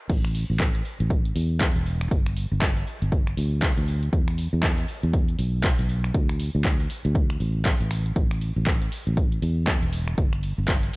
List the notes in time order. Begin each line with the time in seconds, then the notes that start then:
0.09 A1, kick, closed hi-hat, crash
0.24 finger snap, closed hi-hat
0.35 open hi-hat
0.50 A1
0.60 kick, clap, closed hi-hat
0.75 closed hi-hat
0.85 open hi-hat
1.00 A1, closed hi-hat
1.10 kick, closed hi-hat
1.25 closed hi-hat
1.36 E2, open hi-hat
1.61 kick, clap, closed hi-hat
1.76 E1, closed hi-hat
1.86 open hi-hat
2.01 finger snap, closed hi-hat
2.11 G1, kick, closed hi-hat
2.26 finger snap, closed hi-hat
2.36 open hi-hat
2.51 G1
2.62 kick, clap, closed hi-hat
2.77 closed hi-hat
2.87 open hi-hat
3.02 G1, closed hi-hat
3.12 kick, closed hi-hat
3.27 finger snap, closed hi-hat
3.37 D2, open hi-hat
3.62 kick, clap, closed hi-hat
3.77 D2, closed hi-hat
3.88 open hi-hat
4.03 closed hi-hat
4.13 E2, kick, closed hi-hat
4.28 finger snap, closed hi-hat
4.38 open hi-hat
4.53 E2
4.63 kick, clap, closed hi-hat
4.78 closed hi-hat
4.88 open hi-hat
5.03 E2, closed hi-hat
5.14 kick, closed hi-hat
5.29 closed hi-hat
5.39 B1, open hi-hat
5.64 kick, clap, closed hi-hat
5.79 B1, closed hi-hat
5.89 open hi-hat
6.04 finger snap, closed hi-hat
6.14 D2, kick, closed hi-hat
6.29 finger snap, closed hi-hat
6.40 open hi-hat
6.55 D2
6.65 kick, clap, closed hi-hat
6.80 open hi-hat
6.90 open hi-hat
7.05 D2, closed hi-hat
7.15 kick, closed hi-hat
7.30 finger snap, closed hi-hat
7.40 A1, open hi-hat
7.66 kick, clap, closed hi-hat
7.81 A1, closed hi-hat
7.91 finger snap, open hi-hat
8.06 closed hi-hat
8.16 A1, kick, closed hi-hat
8.31 finger snap, closed hi-hat
8.41 open hi-hat, ride
8.56 A1
8.67 kick, clap, closed hi-hat
8.82 closed hi-hat
8.92 open hi-hat, ride
9.07 A1, closed hi-hat
9.17 kick, closed hi-hat
9.32 closed hi-hat
9.42 E2, open hi-hat, ride
9.67 kick, clap, closed hi-hat
9.82 E1, closed hi-hat
9.93 open hi-hat, ride
10.08 finger snap, closed hi-hat
10.18 G1, kick, closed hi-hat
10.33 finger snap, closed hi-hat
10.43 open hi-hat, ride
10.58 G1
10.68 kick, clap, closed hi-hat
10.83 closed hi-hat